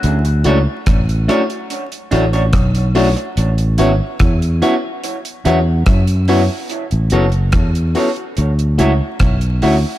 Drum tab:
HH |xxx-xxxxxxxxxxox|xxx-xxx-xxx-xxo-|xxxxxxoxxxx-xxo-|
SD |----r-r-----r---|----r-------r---|----r-------r---|
BD |----o-------o---|----o-------o---|----o-------o---|